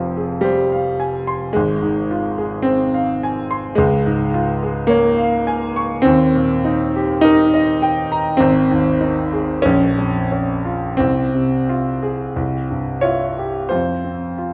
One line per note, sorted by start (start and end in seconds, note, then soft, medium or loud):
0.00 1.51 F1 medium
0.00 1.52 F2 medium
0.00 1.57 C3 medium
0.00 0.43 F3 medium
0.00 0.33 F4 soft
0.17 0.62 G#4 medium
0.41 1.54 G3 medium
0.41 0.89 C5 medium
0.72 1.17 F5 medium
1.00 1.44 G#5 medium
1.27 1.55 C6 medium
1.53 3.75 G#1 medium
1.53 2.65 G#3 loud
1.82 2.27 G#2 medium
2.11 2.55 F4 medium
2.38 2.83 G#4 medium
2.62 3.76 C4 loud
2.62 3.11 C5 medium
2.94 3.39 F5 medium
3.23 3.68 G#5 medium
3.51 3.79 C6 medium
3.75 6.03 C#2 medium
3.75 4.90 G#3 loud
4.06 4.52 G#2 medium
4.34 4.80 F4 medium
4.63 5.08 G#4 medium
4.87 6.05 A#3 loud
4.87 5.36 C#5 medium
5.18 5.65 F5 medium
5.47 5.95 G#5 medium
5.76 6.06 C#6 medium
6.02 8.35 D#2 medium
6.02 7.21 C4 loud
6.35 6.82 A#2 medium
6.64 7.12 D#4 medium
6.96 7.42 G4 medium
7.21 8.39 D#4 loud
7.21 7.70 A#4 medium
7.54 8.00 D#5 medium
7.82 8.29 G5 medium
8.12 8.41 A#5 medium
8.37 9.61 G#1 medium
8.37 9.63 C4 loud
8.71 9.20 D#2 medium
9.01 9.51 D#4 medium
9.33 9.65 G#4 medium
9.62 10.96 A#1 medium
9.62 10.31 C#4 loud
9.99 10.52 F2 medium
10.32 10.87 C#4 medium
10.65 11.00 F4 medium
10.97 12.32 C2 medium
10.97 13.03 C4 loud
11.34 11.89 C3 medium
11.69 12.23 F4 medium
12.02 12.36 G#4 medium
12.36 13.67 C2 medium
12.70 13.25 G2 soft
13.01 13.58 E4 medium
13.01 13.66 F4 medium
13.01 13.69 C#5 medium
13.39 13.71 G4 medium
13.69 14.53 F2 medium
13.69 14.37 F4 medium
13.69 14.53 C5 medium
14.04 14.53 C4 soft
14.38 14.53 F4 medium